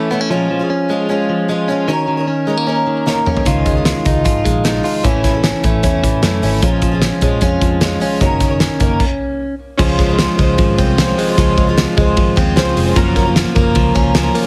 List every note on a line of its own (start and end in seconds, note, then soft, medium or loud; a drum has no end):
0.00 0.30 E3 soft
0.00 0.11 A3 medium
0.00 0.34 A3 medium
0.00 0.10 C#4 medium
0.00 0.11 C#4 medium
0.00 0.12 E4 medium
0.11 0.30 E3 medium
0.11 0.31 A3 medium
0.11 0.21 B3 medium
0.11 0.31 C#4 medium
0.11 0.32 E4 medium
0.21 0.30 C#4 medium
0.30 0.60 A#2 medium
0.30 0.49 F3 medium
0.30 0.61 F3 medium
0.30 0.61 G#3 medium
0.30 0.70 C#4 medium
0.30 0.60 C#4 medium
0.30 0.58 F4 medium
0.51 1.28 F3 medium
0.59 0.89 G#3 soft
0.59 0.90 C#4 medium
0.59 0.89 F4 medium
0.70 1.09 C#4 medium
0.89 1.08 F3 medium
0.89 1.48 G#3 medium
0.89 1.09 G#3 medium
0.89 1.10 C#4 medium
0.89 1.11 F4 medium
1.09 1.47 F3 medium
1.09 1.48 G#3 medium
1.09 1.68 C#4 medium
1.09 1.50 C#4 medium
1.09 1.50 F4 medium
1.29 1.88 F3 medium
1.49 1.67 F3 medium
1.49 1.92 G#3 medium
1.49 1.69 G#3 medium
1.49 1.69 C#4 medium
1.49 1.70 F4 medium
1.68 1.88 F3 medium
1.68 1.88 G#3 medium
1.68 1.88 C#4 medium
1.68 1.89 C#4 medium
1.68 1.89 F4 medium
1.88 2.08 D#3 medium
1.88 2.18 F#3 medium
1.88 2.18 A#3 medium
1.88 2.27 C#4 medium
1.88 2.18 D#4 medium
1.88 2.18 A#4 medium
1.88 2.16 C#5 medium
2.08 2.86 D#3 medium
2.17 2.47 D#4 soft
2.17 2.48 A#4 soft
2.17 2.47 C#5 medium
2.28 2.67 C#4 medium
2.47 2.57 G#3 medium
2.47 2.65 A#3 medium
2.47 2.67 D#4 medium
2.47 2.67 A#4 medium
2.47 2.68 C#5 medium
2.57 3.05 A#3 soft
2.66 3.05 A#3 medium
2.66 3.26 C#4 medium
2.66 3.06 D#4 medium
2.66 3.07 A#4 medium
2.66 3.08 C#5 medium
2.87 3.45 D#3 medium
3.06 3.24 A#3 medium
3.06 3.50 A#3 medium
3.06 3.25 D#4 medium
3.06 3.26 A#4 medium
3.06 3.27 C#5 medium
3.06 snare soft
3.25 3.46 A#3 medium
3.25 4.05 C#4 medium
3.25 3.46 D#4 medium
3.25 3.47 A#4 medium
3.25 3.47 C#5 medium
3.25 mid tom medium
3.37 floor tom medium
3.45 3.93 C#2 loud
3.45 3.75 C#3 medium
3.45 5.03 D#3 medium
3.45 3.76 F3 medium
3.45 3.76 G#3 medium
3.45 3.76 D#4 medium
3.45 3.84 F4 medium
3.45 3.74 F4 medium
3.45 kick medium
3.45 closed hi-hat medium
3.66 4.43 G#3 medium
3.66 kick medium
3.66 closed hi-hat medium
3.75 4.04 G#3 soft
3.75 4.05 D#4 medium
3.75 4.05 F4 medium
3.85 4.24 F4 medium
3.85 snare loud
3.85 closed hi-hat medium
4.04 4.23 C#2 medium
4.04 4.23 F3 medium
4.04 4.24 G#3 medium
4.04 4.63 D#4 medium
4.04 4.25 D#4 medium
4.04 4.26 F4 medium
4.04 kick medium
4.04 closed hi-hat medium
4.24 4.42 G#1 medium
4.24 4.63 F3 medium
4.24 4.64 G#3 medium
4.24 4.65 D#4 medium
4.24 4.83 F4 medium
4.24 4.65 F4 medium
4.24 kick medium
4.24 closed hi-hat medium
4.45 4.79 A#1 medium
4.45 5.08 G#3 medium
4.45 kick medium
4.45 closed hi-hat medium
4.64 4.82 F3 medium
4.64 4.83 G#3 medium
4.64 5.04 D#4 medium
4.64 4.85 D#4 medium
4.64 4.85 F4 medium
4.64 snare loud
4.64 closed hi-hat medium
4.83 5.04 F3 medium
4.83 5.04 G#3 medium
4.83 5.05 D#4 medium
4.83 5.08 F4 medium
4.83 5.05 F4 medium
4.83 open hi-hat medium
5.04 5.51 A1 medium
5.04 5.34 A2 medium
5.04 5.23 E3 medium
5.04 5.34 E3 medium
5.04 5.34 A3 medium
5.04 5.43 C#4 medium
5.04 5.34 C#4 medium
5.04 5.32 E4 medium
5.04 kick medium
5.04 closed hi-hat medium
5.24 6.02 E3 medium
5.24 kick medium
5.24 snare soft
5.24 closed hi-hat medium
5.34 5.63 A3 soft
5.34 5.64 C#4 medium
5.34 5.63 E4 medium
5.43 5.83 C#4 medium
5.43 snare loud
5.43 closed hi-hat medium
5.63 5.81 A1 medium
5.63 5.81 E3 medium
5.63 6.22 A3 medium
5.63 5.83 A3 medium
5.63 5.83 C#4 medium
5.63 5.84 E4 medium
5.63 kick medium
5.63 closed hi-hat medium
5.83 6.00 E2 medium
5.83 6.21 E3 medium
5.83 6.22 A3 medium
5.83 6.43 C#4 medium
5.83 6.24 C#4 medium
5.83 6.24 E4 medium
5.83 kick medium
5.83 closed hi-hat medium
6.03 6.20 A2 medium
6.03 6.62 E3 medium
6.03 kick medium
6.03 closed hi-hat medium
6.22 6.40 F#2 medium
6.22 6.41 E3 medium
6.22 6.67 A3 medium
6.22 6.42 A3 medium
6.22 6.43 C#4 medium
6.22 6.44 E4 medium
6.22 snare loud
6.22 closed hi-hat medium
6.42 6.59 G#1 medium
6.42 6.62 E3 medium
6.42 6.63 A3 medium
6.42 6.63 C#4 medium
6.42 6.62 C#4 medium
6.42 6.64 E4 medium
6.42 open hi-hat medium
6.62 7.10 A#1 medium
6.62 6.92 A#2 medium
6.62 6.92 F3 medium
6.62 6.82 F3 medium
6.62 6.93 G#3 medium
6.62 7.02 C#4 medium
6.62 6.92 C#4 medium
6.62 6.90 F4 medium
6.62 kick loud
6.62 closed hi-hat medium
6.82 7.61 F3 medium
6.82 kick medium
6.82 closed hi-hat medium
6.92 7.21 G#3 medium
6.92 7.22 C#4 medium
6.92 7.22 F4 medium
7.02 7.42 C#4 medium
7.02 snare loud
7.02 closed hi-hat medium
7.21 7.39 A#1 medium
7.21 7.40 F3 medium
7.21 7.41 G#3 medium
7.21 7.80 G#3 medium
7.21 7.42 C#4 medium
7.21 7.43 F4 medium
7.21 kick medium
7.21 closed hi-hat medium
7.41 7.59 F2 medium
7.41 7.79 F3 medium
7.41 7.80 G#3 medium
7.41 8.01 C#4 medium
7.41 7.82 C#4 medium
7.41 7.82 F4 medium
7.41 kick medium
7.41 closed hi-hat medium
7.61 7.95 F2 medium
7.61 8.21 F3 medium
7.61 kick medium
7.61 closed hi-hat medium
7.81 7.99 F3 medium
7.81 8.00 G#3 medium
7.81 8.25 G#3 medium
7.81 8.01 C#4 medium
7.81 8.02 F4 medium
7.81 snare loud
7.81 closed hi-hat medium
8.00 8.20 F3 medium
8.00 8.21 G#3 medium
8.00 8.22 C#4 medium
8.00 8.21 C#4 medium
8.00 8.22 F4 medium
8.00 open hi-hat medium
8.21 8.68 F#1 medium
8.21 8.40 D#3 medium
8.21 8.50 F#3 medium
8.21 8.51 A#3 medium
8.21 8.60 C#4 medium
8.21 8.51 D#4 medium
8.21 8.50 A#4 medium
8.21 8.48 C#5 medium
8.21 kick medium
8.21 closed hi-hat medium
8.40 9.04 D#3 medium
8.40 kick medium
8.40 snare soft
8.40 closed hi-hat medium
8.49 8.80 D#4 soft
8.49 8.81 A#4 medium
8.49 8.80 C#5 medium
8.60 9.54 C#4 medium
8.60 snare loud
8.60 closed hi-hat medium
8.80 8.97 F#1 medium
8.80 9.00 A#3 medium
8.80 9.04 A#3 medium
8.80 9.01 D#4 medium
8.80 9.01 A#4 medium
8.80 9.02 C#5 medium
8.80 kick medium
8.80 closed hi-hat medium
9.00 kick loud
9.00 crash medium
9.77 10.26 C#2 medium
9.77 10.09 C#3 medium
9.77 10.19 F3 medium
9.77 10.09 F3 medium
9.77 10.09 G#3 medium
9.77 12.52 C#4 medium
9.77 10.09 C#4 medium
9.77 12.52 F4 medium
9.77 10.08 F4 medium
9.77 12.52 G#4 medium
9.77 12.52 C5 medium
9.77 10.07 C5 medium
9.77 kick loud
9.77 crash medium
9.98 10.38 G#3 medium
9.98 kick medium
9.98 snare soft
9.98 ride medium
10.09 10.37 G#3 medium
10.09 10.39 C#4 medium
10.09 10.39 F4 medium
10.09 10.39 C5 medium
10.19 10.58 F3 medium
10.19 snare loud
10.19 ride medium
10.38 10.56 C#2 loud
10.38 10.77 G#3 medium
10.38 11.17 G#3 medium
10.38 10.79 C#4 medium
10.38 10.80 F4 medium
10.38 10.80 C5 medium
10.38 kick medium
10.38 ride medium
10.58 10.75 G#1 loud
10.58 10.98 F3 medium
10.58 kick loud
10.58 ride medium
10.78 11.12 C2 medium
10.78 10.97 G#3 medium
10.78 12.36 C4 medium
10.78 10.98 C#4 medium
10.78 10.99 F4 medium
10.78 11.00 C5 medium
10.78 kick medium
10.78 ride medium
10.98 11.37 F3 medium
10.98 11.28 G#3 medium
10.98 11.29 C#4 medium
10.98 11.28 F4 medium
10.98 11.26 C5 medium
10.98 snare loud
10.98 ride medium
11.18 11.57 G#3 medium
11.18 open hi-hat medium
11.18 ride medium
11.28 11.37 G#3 soft
11.28 11.37 C#4 soft
11.28 11.38 F4 medium
11.28 11.38 C5 medium
11.37 11.85 C#2 loud
11.37 11.67 C#3 medium
11.37 11.77 F3 medium
11.37 11.67 F3 medium
11.37 11.68 G#3 medium
11.37 11.68 C#4 medium
11.37 11.67 F4 medium
11.37 11.66 C5 medium
11.37 kick loud
11.37 hi-hat pedal medium
11.37 ride medium
11.58 11.96 G#3 medium
11.58 kick medium
11.58 ride medium
11.67 11.96 G#3 soft
11.67 11.97 C#4 medium
11.67 11.98 F4 medium
11.67 11.97 C5 medium
11.77 12.16 F3 medium
11.77 snare loud
11.77 ride medium
11.97 12.17 C#2 medium
11.97 12.35 G#3 medium
11.97 12.75 G#3 medium
11.97 12.37 C#4 medium
11.97 12.38 F4 medium
11.97 12.38 C5 medium
11.97 kick loud
11.97 ride medium
12.17 12.34 G#1 loud
12.17 12.56 F3 medium
12.17 kick loud
12.17 ride medium
12.36 12.57 D#2 medium
12.36 12.55 G#3 medium
12.36 13.00 C4 medium
12.36 12.56 C#4 medium
12.36 12.57 F4 medium
12.36 12.57 C5 medium
12.36 kick medium
12.36 ride medium
12.56 12.73 C#2 medium
12.56 12.96 F3 medium
12.56 12.86 G#3 medium
12.56 12.94 C#4 medium
12.56 12.86 C#4 medium
12.56 12.95 F4 medium
12.56 12.85 F4 medium
12.56 12.96 G#4 medium
12.56 12.96 C5 medium
12.56 12.85 C5 medium
12.56 snare loud
12.56 ride medium
12.76 12.93 F1 medium
12.76 13.00 G#3 medium
12.76 open hi-hat medium
12.76 ride medium
12.86 12.96 G#3 soft
12.86 12.96 C#4 medium
12.86 12.96 F4 medium
12.86 12.96 C5 medium
12.95 13.43 F#1 loud
12.95 13.36 F3 medium
12.95 13.26 F#3 medium
12.95 14.47 F#3 medium
12.95 13.26 A#3 medium
12.95 14.47 C#4 medium
12.95 13.26 C#4 medium
12.95 14.47 F4 medium
12.95 13.26 F4 medium
12.95 14.47 A#4 medium
12.95 13.24 A#4 loud
12.95 kick loud
12.95 hi-hat pedal medium
12.95 ride medium
13.16 13.55 A#3 medium
13.16 kick medium
13.16 snare soft
13.16 ride medium
13.25 13.55 C#4 medium
13.25 13.56 F4 medium
13.25 13.55 A#4 medium
13.36 13.75 F3 medium
13.36 snare loud
13.36 ride medium
13.55 13.73 F#1 medium
13.55 13.93 A#3 medium
13.55 14.34 A#3 medium
13.55 13.95 C#4 medium
13.55 13.96 F4 medium
13.55 13.96 A#4 medium
13.55 kick loud
13.55 ride medium
13.75 13.92 C#2 loud
13.75 14.15 F3 medium
13.75 kick medium
13.75 ride medium
13.95 14.29 C#2 medium
13.95 14.13 A#3 medium
13.95 14.47 C#4 medium
13.95 14.15 C#4 medium
13.95 14.15 F4 medium
13.95 14.16 A#4 medium
13.95 kick medium
13.95 ride medium
14.14 14.47 F3 medium
14.14 14.44 A#3 medium
14.14 14.45 C#4 medium
14.14 14.44 F4 medium
14.14 14.43 A#4 medium
14.14 snare loud
14.14 ride medium
14.35 14.47 A#3 medium
14.35 open hi-hat medium
14.35 ride medium